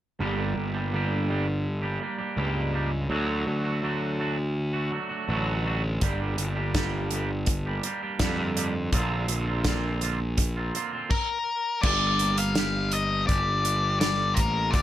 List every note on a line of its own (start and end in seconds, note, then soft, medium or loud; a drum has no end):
0.19 0.54 G1 medium
0.19 0.92 G2 medium
0.19 0.92 D3 medium
0.19 0.75 G3 medium
0.19 0.75 A#3 medium
0.19 0.74 D4 medium
0.19 0.73 G4 medium
0.56 1.98 G1 medium
0.74 0.93 G3 medium
0.74 0.93 A#3 medium
0.74 0.95 D4 medium
0.74 0.94 G4 medium
0.93 1.66 G2 medium
0.93 1.66 D3 medium
0.93 1.28 G3 medium
0.93 1.29 A#3 medium
0.93 1.30 D4 medium
0.93 1.30 G4 medium
1.29 1.47 G3 medium
1.29 1.47 A#3 medium
1.29 1.48 D4 medium
1.29 1.47 G4 medium
1.48 muted clean electric guitar stroke soft
1.82 1.99 G3 medium
1.82 2.00 A#3 medium
1.82 2.02 D4 medium
1.82 2.02 G4 medium
2.00 2.20 G3 medium
2.00 2.19 A#3 medium
2.00 2.18 D4 medium
2.00 2.17 G4 medium
2.18 2.37 G3 medium
2.18 2.37 A#3 medium
2.18 2.38 D4 medium
2.18 2.38 G4 medium
2.36 3.06 C#2 medium
2.36 3.08 G2 medium
2.36 2.72 G3 medium
2.36 2.73 A#3 medium
2.36 2.74 D4 medium
2.36 2.74 G4 medium
2.73 2.92 G3 medium
2.73 2.92 A#3 medium
2.73 2.92 D4 medium
2.73 2.91 G4 medium
2.92 muted clean electric guitar stroke soft
3.09 3.44 D2 medium
3.09 3.81 D3 medium
3.09 3.82 F#3 medium
3.09 3.65 A3 medium
3.09 3.65 D4 medium
3.09 3.63 F#4 medium
3.47 4.89 D2 medium
3.64 3.82 A3 soft
3.64 3.83 D4 medium
3.64 3.83 F#4 medium
3.82 4.56 D3 medium
3.82 4.17 F#3 medium
3.82 4.18 A3 medium
3.82 4.20 D4 medium
3.82 4.20 F#4 medium
4.19 4.38 F#3 medium
4.19 4.38 A3 medium
4.19 4.38 D4 medium
4.19 4.37 F#4 medium
4.39 muted clean electric guitar stroke soft
4.73 4.91 A3 medium
4.73 4.92 D4 medium
4.73 4.93 F#4 medium
4.91 5.28 F#3 medium
4.91 5.10 A3 medium
4.91 5.10 D4 medium
4.91 5.08 F#4 medium
5.09 5.29 A3 soft
5.09 5.30 D4 medium
5.09 5.29 F#4 medium
5.28 5.98 A1 medium
5.28 5.99 D3 medium
5.28 5.63 F#3 medium
5.28 5.64 A3 medium
5.28 5.66 D4 medium
5.28 5.66 F#4 loud
5.64 5.84 F#3 medium
5.64 5.83 A3 medium
5.64 5.84 D4 medium
5.64 5.83 F#4 medium
5.84 muted clean electric guitar stroke soft
6.00 6.35 G1 medium
6.00 6.73 G2 medium
6.00 6.74 D3 medium
6.00 6.58 G3 medium
6.00 6.58 A#3 medium
6.00 6.57 D4 medium
6.00 6.55 G4 loud
6.00 kick loud
6.00 closed hi-hat medium
6.38 7.80 G1 medium
6.38 closed hi-hat medium
6.56 6.74 G3 soft
6.56 6.76 A#3 medium
6.56 6.76 D4 medium
6.56 6.76 G4 medium
6.74 7.47 G2 medium
6.74 7.48 D3 medium
6.74 7.11 G3 medium
6.74 7.12 A#3 loud
6.74 7.14 D4 medium
6.74 7.13 G4 medium
6.74 kick loud
6.74 snare loud
6.74 closed hi-hat medium
7.11 7.31 G3 medium
7.11 7.32 A#3 medium
7.11 7.32 D4 medium
7.11 7.30 G4 medium
7.11 closed hi-hat medium
7.32 muted clean electric guitar stroke soft
7.46 kick loud
7.46 closed hi-hat medium
7.66 7.83 G3 medium
7.66 7.85 A#3 medium
7.66 7.86 D4 medium
7.66 7.85 G4 medium
7.83 8.04 G3 medium
7.83 8.03 A#3 medium
7.83 8.02 D4 medium
7.83 8.01 G4 medium
7.83 closed hi-hat medium
8.03 8.19 G3 medium
8.03 8.20 A#3 medium
8.03 8.21 D4 medium
8.03 8.21 G4 medium
8.19 8.89 F2 medium
8.19 8.91 G2 medium
8.19 8.91 D3 medium
8.19 8.55 G3 medium
8.19 8.56 A#3 medium
8.19 8.57 D4 medium
8.19 8.57 G4 loud
8.19 kick loud
8.19 snare loud
8.19 closed hi-hat medium
8.56 8.75 G3 medium
8.56 8.75 A#3 medium
8.56 8.74 D4 medium
8.56 8.74 G4 medium
8.56 closed hi-hat medium
8.75 muted clean electric guitar stroke medium
8.92 9.26 A#1 medium
8.92 9.65 A#2 medium
8.92 9.65 D3 medium
8.92 9.49 A#3 medium
8.92 9.48 C4 medium
8.92 9.46 F4 medium
8.92 kick loud
8.92 closed hi-hat medium
9.28 10.70 A#1 medium
9.28 closed hi-hat medium
9.48 9.66 A#3 medium
9.48 9.66 C4 medium
9.48 9.67 F4 medium
9.64 10.39 A#2 medium
9.64 10.00 D3 medium
9.64 10.01 A#3 medium
9.64 10.02 C4 medium
9.64 10.02 F4 medium
9.64 kick loud
9.64 snare loud
9.64 closed hi-hat medium
10.01 10.21 D3 medium
10.01 10.20 A#3 medium
10.01 10.20 C4 medium
10.01 10.19 F4 medium
10.01 closed hi-hat medium
10.21 muted clean electric guitar stroke soft
10.38 kick medium
10.38 closed hi-hat medium
10.57 10.74 A#3 medium
10.57 10.75 C4 medium
10.57 10.75 F4 medium
10.74 11.09 D3 medium
10.74 10.94 A#3 medium
10.74 10.93 C4 medium
10.74 10.91 F4 medium
10.74 closed hi-hat medium
10.93 11.10 A#3 medium
10.93 11.10 C4 medium
10.93 11.09 F4 medium
11.10 11.86 A#4 medium
11.10 kick loud
11.10 crash medium
11.82 13.25 G1 loud
11.82 13.66 G2 medium
11.82 12.39 D5 loud
11.82 kick loud
11.82 crash medium
12.19 14.02 A#3 medium
12.19 closed hi-hat medium
12.38 12.94 F5 loud
12.38 closed hi-hat medium
12.55 13.28 G4 medium
12.55 snare loud
12.55 closed hi-hat medium
12.92 13.27 D#5 medium
12.92 closed hi-hat medium
13.27 14.38 G1 medium
13.27 14.74 G4 medium
13.27 13.99 D5 medium
13.27 kick loud
13.27 closed hi-hat medium
13.65 14.82 D4 medium
13.65 closed hi-hat medium
14.00 14.74 G3 medium
14.00 14.39 D5 medium
14.00 snare loud
14.00 closed hi-hat medium
14.34 14.71 A1 medium
14.34 14.74 A#4 medium
14.34 kick medium
14.34 closed hi-hat medium
14.39 14.75 A#3 medium
14.71 14.82 D2 medium
14.71 14.82 D3 medium
14.71 14.82 D5 medium
14.71 kick medium
14.71 closed hi-hat medium